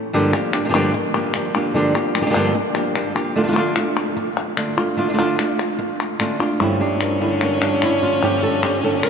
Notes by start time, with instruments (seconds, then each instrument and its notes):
Already playing: nylon-string guitar A2 A4
0.13 nylon-string guitar G2 D3 F3 A#3 D4 G4
0.33 nylon-string guitar F3 A#3 D4 G4, clap
0.53 nylon-string guitar F3 A#3 D4 G4, clap
0.65 nylon-string guitar D3 F3 A#3 D4 G4
0.69 nylon-string guitar D3 F3 A#3 D4 G4
0.74 nylon-string guitar G2 D3 F3 A#3 D4 G4, clap
0.94 muted nylon-string guitar stroke
1.14 nylon-string guitar F3 A#3 D4 G4, clap
1.34 nylon-string guitar F3 A#3 D4 G4, clap
1.55 nylon-string guitar F3 A#3 D4 G4, clap
1.74 nylon-string guitar G2 D3 F3 A#3 D4 G4
1.95 nylon-string guitar F3 A#3 D4 G4, clap
2.15 nylon-string guitar F3 A#3 D4 G4, clap
2.21 nylon-string guitar D3 F3 A#3 D4 G4
2.26 nylon-string guitar D3 F3 A#3 D4 G4
2.30 nylon-string guitar D3 F3 A#3 D4 G4
2.34 nylon-string guitar G2 D3 F3 A#3 D4 G4, clap
2.55 muted nylon-string guitar stroke
2.75 nylon-string guitar F3 A#3 D4 G4, clap
2.95 nylon-string guitar F3 A#3 D4 G4, clap
3.15 nylon-string guitar F3 A#3 D4 G4, clap
3.36 nylon-string guitar D3 A3 D4 F4
3.43 nylon-string guitar D3 A3 D4 F4
3.47 nylon-string guitar D3 A3 D4 F4
3.52 nylon-string guitar D3 A3 D4 F4
3.56 nylon-string guitar D3 A3 D4 F4, clap
3.76 nylon-string guitar A3 D4 F4, clap
3.97 clap
4.17 muted nylon-string guitar stroke
4.37 clap
4.57 nylon-string guitar D3 A3 D4 F4, clap
4.77 nylon-string guitar A3 D4 F4, clap
4.97 nylon-string guitar D3 A3 D4 F4
5.09 nylon-string guitar D3 A3 D4 F4
5.13 nylon-string guitar D3 A3 D4 F4
5.18 nylon-string guitar D3 A3 D4 F4, clap
5.39 nylon-string guitar A3 D4, clap
5.59 clap
5.79 muted nylon-string guitar stroke
6.00 clap
6.19 nylon-string guitar D3 A3 C#4 D4 F4, clap
6.39 nylon-string guitar A3 D4 F4, clap
6.59 nylon-string guitar G2 D3 F3 A#3 D4 E4 G4, violin C#4, clap
6.81 nylon-string guitar F3 A#3 D4 G4
7.01 nylon-string guitar F3 A#3 D4 G4, clap
7.21 nylon-string guitar D3 F3 A#3 D4 E4 G4
7.41 nylon-string guitar A#3, muted nylon-string guitar stroke, clap
7.61 nylon-string guitar G2 F3 A#3 D4 G4, clap
7.82 nylon-string guitar E4, clap
8.03 nylon-string guitar F4
8.22 nylon-string guitar G2 D3 F3 A#3 D4 G4, clap
8.43 nylon-string guitar F3 A#3 D4 G4 A4
8.63 nylon-string guitar F3 A#3 D4 G4, clap
8.83 nylon-string guitar D3 F3 A#3 D4 G4 A4
9.03 nylon-string guitar A#4, muted nylon-string guitar stroke, clap